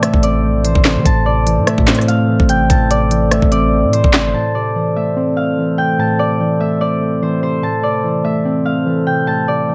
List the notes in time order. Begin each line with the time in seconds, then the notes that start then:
Already playing: A2 C3 E3 A3 C4 A4 C5 D5 G5 A5
0.02 A3 E5, cross-stick, closed hi-hat
0.14 A1, kick
0.23 C4 D5, closed hi-hat
0.43 A#1 A3
0.64 E3 C5, closed hi-hat
0.75 A1, kick
0.85 C3 C5, snare, clap
0.96 E3
1.05 A1 A2 A4 C5 A5, kick, closed hi-hat
1.26 C3 D5
1.46 E3, closed hi-hat
1.57 A2
1.66 A3 E5, cross-stick, closed hi-hat
1.78 A2, kick
1.87 C4, snare, clap, closed hi-hat
1.95 closed hi-hat
1.99 cross-stick, closed hi-hat
2.08 A3 F5, closed hi-hat
2.28 E3
2.40 A1, kick
2.49 C3 G5, closed hi-hat
2.69 A1 A2 A5, kick, closed hi-hat
2.90 C3 D5, closed hi-hat
3.11 E3, closed hi-hat
3.31 A3 E5, cross-stick, closed hi-hat
3.42 A1, kick
3.52 C4 D5, closed hi-hat
3.72 A3
3.83 A2
3.93 E3 C5, closed hi-hat
4.04 A1, kick
4.13 C3 C5, snare, clap
4.25 G1
4.34 A2 A3 A4 C5 A5
4.55 C3 D5
4.76 E3
4.96 A3 E5
5.16 C4
5.37 A3 F5
5.58 E3
5.78 C3 G5
5.98 A2 A5
6.19 C3 D5
6.40 E3
6.60 A3 E5
6.81 C4 D5
7.01 A3
7.22 E3 C5
7.42 C3 C5
7.62 A2 C5 A5
7.83 C3 D5
8.04 E3
8.24 A3 E5
8.45 C4
8.65 A3 F5
8.86 E3
9.07 C3 G5
9.27 A2 A5
9.48 C3 D5
9.68 E3